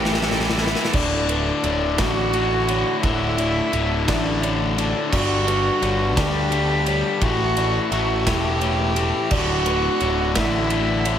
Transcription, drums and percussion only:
0.05 snare
0.14 snare
0.22 snare
0.31 snare
0.40 snare
0.50 snare
0.58 snare
0.67 snare
0.75 snare
0.85 snare
0.93 kick, crash
1.29 ride
1.64 ride
1.98 kick, snare, ride
2.33 ride
2.69 ride
3.03 kick, ride
3.38 ride
3.73 ride
4.08 kick, snare, ride
4.43 ride
4.78 ride
5.13 kick, crash
5.48 ride
5.82 ride
6.17 kick, snare, ride
6.52 ride
6.86 ride
7.22 kick, ride
7.57 ride
7.92 ride
8.27 kick, snare, ride
8.61 ride
8.96 ride
9.31 kick, crash
9.66 ride
10.00 ride
10.36 kick, snare, ride
10.70 ride
11.05 ride

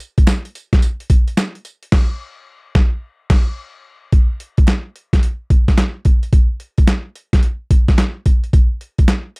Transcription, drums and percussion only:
0.00 closed hi-hat, tambourine
0.18 kick, closed hi-hat
0.27 snare, clap, closed hi-hat, tambourine
0.45 closed hi-hat
0.55 closed hi-hat, tambourine
0.73 kick, snare, closed hi-hat
0.82 closed hi-hat, tambourine
1.00 closed hi-hat
1.10 kick, closed hi-hat
1.28 closed hi-hat
1.37 snare, clap, closed hi-hat, tambourine
1.55 closed hi-hat
1.65 closed hi-hat, tambourine
1.83 closed hi-hat
1.92 kick, snare, crash
2.75 kick, snare
3.30 kick, snare, crash
4.12 kick, closed hi-hat
4.40 closed hi-hat
4.57 kick, closed hi-hat
4.67 snare, clap, closed hi-hat
4.96 closed hi-hat
5.13 kick, snare, closed hi-hat
5.23 closed hi-hat
5.50 kick, closed hi-hat
5.68 kick, snare, closed hi-hat
5.78 snare, clap, closed hi-hat
6.05 kick, closed hi-hat
6.23 closed hi-hat
6.33 kick, closed hi-hat
6.60 closed hi-hat
6.78 kick, closed hi-hat
6.87 snare, clap, closed hi-hat
7.16 closed hi-hat
7.33 kick, snare, closed hi-hat
7.43 closed hi-hat
7.71 kick, closed hi-hat
7.88 kick, snare, closed hi-hat
7.98 snare, clap, closed hi-hat
8.26 kick, closed hi-hat
8.44 closed hi-hat
8.53 kick, closed hi-hat
8.81 closed hi-hat
8.98 kick, closed hi-hat
9.08 snare, clap, closed hi-hat
9.36 closed hi-hat

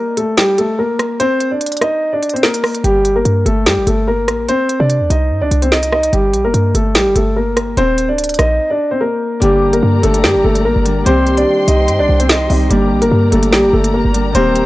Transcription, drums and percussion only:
0.17 closed hi-hat
0.37 snare, closed hi-hat
0.58 closed hi-hat
0.99 cross-stick, closed hi-hat
1.20 closed hi-hat
1.40 closed hi-hat
1.61 closed hi-hat
1.66 closed hi-hat
1.72 closed hi-hat
1.77 closed hi-hat
1.81 cross-stick, closed hi-hat
2.23 closed hi-hat
2.29 closed hi-hat
2.36 closed hi-hat
2.43 snare
2.54 closed hi-hat
2.64 cross-stick, open hi-hat
2.75 closed hi-hat
2.84 closed hi-hat
3.05 closed hi-hat
3.25 closed hi-hat
3.46 closed hi-hat
3.66 snare, closed hi-hat
3.87 closed hi-hat
4.28 cross-stick, closed hi-hat
4.49 closed hi-hat
4.69 closed hi-hat
4.90 closed hi-hat
5.10 closed hi-hat
5.51 closed hi-hat
5.62 closed hi-hat
5.72 snare
5.83 closed hi-hat
5.92 cross-stick
6.03 closed hi-hat
6.13 closed hi-hat
6.34 closed hi-hat
6.54 closed hi-hat
6.75 closed hi-hat
6.95 snare, closed hi-hat
7.16 closed hi-hat
7.57 cross-stick, closed hi-hat
7.77 closed hi-hat
7.98 closed hi-hat
8.18 closed hi-hat
8.24 closed hi-hat
8.29 closed hi-hat
8.34 closed hi-hat
8.39 cross-stick, closed hi-hat
9.42 closed hi-hat
9.73 closed hi-hat
10.03 closed hi-hat
10.14 closed hi-hat
10.24 snare
10.55 closed hi-hat
10.86 closed hi-hat
11.06 closed hi-hat
11.27 closed hi-hat
11.37 closed hi-hat
11.68 closed hi-hat
11.88 closed hi-hat
12.20 closed hi-hat
12.29 snare
12.50 open hi-hat
12.71 closed hi-hat
13.02 closed hi-hat
13.32 closed hi-hat
13.43 closed hi-hat
13.53 snare
13.84 closed hi-hat
14.14 closed hi-hat
14.35 closed hi-hat
14.56 closed hi-hat

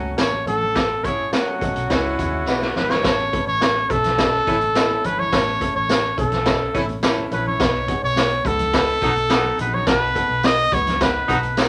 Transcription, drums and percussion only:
0.05 high conga
0.18 snare, closed hi-hat, tambourine
0.33 high conga
0.47 closed hi-hat, low conga
0.62 low conga
0.75 kick, snare, closed hi-hat, tambourine, muted conga
1.03 kick, closed hi-hat, high conga
1.33 snare, closed hi-hat, tambourine, muted conga, high conga
1.61 kick, closed hi-hat, high conga
1.76 closed hi-hat
1.90 kick, snare, closed hi-hat, tambourine
2.19 kick, closed hi-hat, muted conga
2.33 high conga
2.47 snare, tambourine
2.62 snare, high conga
2.76 snare, muted conga, low conga
2.90 snare, low conga
3.04 kick, snare, closed hi-hat, tambourine
3.33 kick, closed hi-hat, muted conga, high conga
3.61 snare, closed hi-hat, tambourine, muted conga, high conga
3.90 kick, closed hi-hat, high conga
4.04 snare, closed hi-hat, low conga
4.18 kick, snare, closed hi-hat, tambourine, muted conga, high conga
4.47 kick, closed hi-hat, muted conga
4.61 closed hi-hat, high conga
4.75 snare, closed hi-hat, tambourine, muted conga
4.91 high conga
5.04 closed hi-hat, low conga
5.19 low conga
5.33 kick, snare, closed hi-hat, tambourine
5.60 kick, closed hi-hat, high conga
5.89 snare, closed hi-hat, tambourine, muted conga, high conga
6.18 kick, closed hi-hat, muted conga, high conga
6.32 snare, closed hi-hat, low conga
6.45 kick, snare, closed hi-hat, tambourine, muted conga, high conga
6.75 kick, closed hi-hat, muted conga
6.89 closed hi-hat, high conga
7.03 snare, closed hi-hat, tambourine
7.18 high conga
7.31 closed hi-hat, muted conga, low conga
7.46 low conga
7.60 kick, snare, closed hi-hat, tambourine
7.88 kick, closed hi-hat, muted conga, high conga
8.16 snare, closed hi-hat, tambourine, muted conga, high conga
8.45 kick, closed hi-hat, muted conga, high conga
8.59 closed hi-hat, low conga
8.73 kick, snare, closed hi-hat, tambourine, muted conga, high conga
9.02 kick, closed hi-hat, muted conga
9.16 closed hi-hat, high conga
9.30 snare, closed hi-hat, tambourine, muted conga
9.44 high conga
9.58 closed hi-hat, muted conga, low conga
9.74 low conga
9.87 kick, snare, closed hi-hat, tambourine
10.15 kick, closed hi-hat, muted conga, high conga
10.43 snare, closed hi-hat, tambourine, muted conga, high conga
10.72 kick, closed hi-hat, high conga
10.87 snare, closed hi-hat, low conga
11.01 kick, snare, closed hi-hat, tambourine, high conga
11.29 kick, closed hi-hat
11.43 closed hi-hat, high conga
11.57 snare, closed hi-hat, tambourine, muted conga

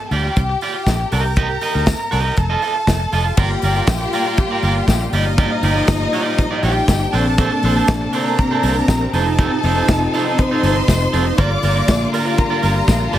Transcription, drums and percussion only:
0.11 open hi-hat
0.36 kick, closed hi-hat
0.61 open hi-hat
0.87 kick, snare, closed hi-hat, tambourine
1.12 open hi-hat
1.36 kick, closed hi-hat
1.61 open hi-hat
1.86 kick, snare, closed hi-hat, tambourine
2.12 open hi-hat
2.37 kick, closed hi-hat
2.62 open hi-hat
2.87 kick, snare, closed hi-hat, tambourine
3.13 open hi-hat
3.37 kick, crash
3.62 open hi-hat
3.87 kick, snare, closed hi-hat, tambourine
4.13 open hi-hat
4.37 kick, closed hi-hat
4.63 open hi-hat
4.88 kick, snare, closed hi-hat, tambourine
5.13 open hi-hat
5.38 kick, closed hi-hat
5.63 open hi-hat
5.87 kick, snare, closed hi-hat, tambourine
6.13 open hi-hat
6.38 kick, closed hi-hat
6.63 open hi-hat
6.88 kick, snare, closed hi-hat, tambourine
7.13 open hi-hat
7.38 kick, closed hi-hat
7.63 open hi-hat
7.88 kick, snare, closed hi-hat, tambourine
8.13 open hi-hat
8.38 kick, closed hi-hat
8.63 open hi-hat
8.88 kick, snare, closed hi-hat, tambourine
9.14 open hi-hat
9.39 kick, closed hi-hat
9.63 open hi-hat
9.88 kick, snare, closed hi-hat, tambourine
10.14 open hi-hat
10.38 kick, closed hi-hat
10.63 open hi-hat
10.88 kick, snare, closed hi-hat, tambourine
11.13 open hi-hat
11.38 kick, closed hi-hat
11.63 open hi-hat
11.88 kick, snare, closed hi-hat, tambourine
12.14 open hi-hat
12.38 kick, closed hi-hat
12.63 open hi-hat
12.88 kick, snare, closed hi-hat, tambourine
13.13 open hi-hat

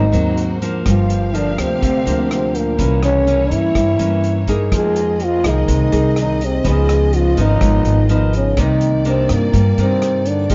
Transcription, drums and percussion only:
0.13 closed hi-hat
0.37 closed hi-hat
0.62 closed hi-hat
0.86 kick, cross-stick, closed hi-hat
1.10 closed hi-hat
1.35 closed hi-hat
1.58 cross-stick, closed hi-hat
1.82 kick, closed hi-hat
2.07 closed hi-hat
2.31 cross-stick, closed hi-hat
2.55 closed hi-hat
2.79 kick, closed hi-hat
3.03 cross-stick, closed hi-hat
3.27 closed hi-hat
3.51 closed hi-hat
3.75 kick, cross-stick, closed hi-hat
3.99 closed hi-hat
4.24 closed hi-hat
4.48 kick, closed hi-hat
4.72 kick, cross-stick, closed hi-hat
4.96 closed hi-hat
5.20 closed hi-hat
5.44 cross-stick, closed hi-hat
5.68 kick, closed hi-hat
5.92 closed hi-hat
6.16 cross-stick, closed hi-hat
6.41 closed hi-hat
6.65 kick, closed hi-hat
6.89 cross-stick, closed hi-hat
7.13 closed hi-hat
7.37 closed hi-hat
7.61 kick, cross-stick, closed hi-hat
7.85 closed hi-hat
8.09 closed hi-hat
8.33 closed hi-hat
8.57 kick, cross-stick, closed hi-hat
8.81 closed hi-hat
9.05 closed hi-hat
9.29 cross-stick, closed hi-hat
9.53 kick, closed hi-hat
9.78 closed hi-hat
10.02 cross-stick, closed hi-hat
10.26 closed hi-hat
10.50 kick, closed hi-hat

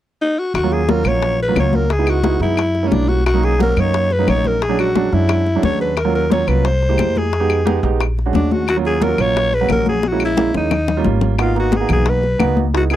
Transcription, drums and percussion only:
0.55 high bongo, high conga, claves
0.71 high bongo, high conga
0.89 high bongo, high conga
1.05 high conga, claves
1.22 high bongo, high conga
1.40 high bongo, high conga
1.56 high bongo, low bongo, high conga, claves
1.73 high bongo, high conga
1.90 high bongo, high conga
2.07 high bongo, high conga, claves
2.24 high bongo, high conga
2.57 high bongo, high conga, claves
2.75 high bongo, high conga
2.92 high bongo, low bongo, high conga
3.09 high bongo
3.26 high bongo, claves
3.43 high bongo, high conga
3.60 high bongo, high conga
3.77 high conga, claves
3.94 high bongo, high conga
4.11 high bongo, high conga
4.28 high bongo, low bongo, high conga, claves
4.45 high bongo, high conga
4.62 high bongo, high conga
4.79 high bongo, high conga, claves
4.96 high bongo, high conga
5.29 high bongo, high conga, claves
5.46 high bongo, high conga
5.63 high bongo, low bongo, high conga
5.80 high bongo
5.97 high bongo, high conga, claves
6.15 high bongo, high conga
6.31 high bongo, high conga
6.48 high conga, claves
6.65 high bongo, high conga
6.82 high bongo, high conga
6.98 high bongo, low bongo, high conga, claves
7.16 high bongo, high conga
7.33 high bongo, high conga
7.50 high bongo, high conga, claves
7.67 high bongo, high conga
8.00 high bongo, high conga, claves
8.18 high bongo, high conga
8.34 high bongo, low bongo, high conga
8.51 high bongo, high conga
8.68 high bongo, high conga, claves
8.85 high bongo, high conga
9.02 high bongo, high conga
9.18 high conga, claves
9.35 high bongo, high conga
9.52 high bongo, high conga
9.69 high bongo, low bongo, high conga, claves
9.86 high bongo, high conga
10.03 high bongo, high conga
10.20 high conga, claves
10.37 low bongo, high conga
10.54 low bongo
10.71 low bongo, high conga, claves
10.88 low bongo, high conga
11.04 low bongo, high conga
11.21 low bongo
11.39 high bongo, high conga, claves
11.56 high bongo, high conga
11.72 high bongo, high conga
11.89 high conga, low conga, claves
12.06 high bongo, high conga
12.23 high bongo, high conga
12.40 high bongo, low bongo, high conga, claves
12.57 high bongo, high conga
12.73 high bongo, high conga
12.90 high bongo, high conga, claves

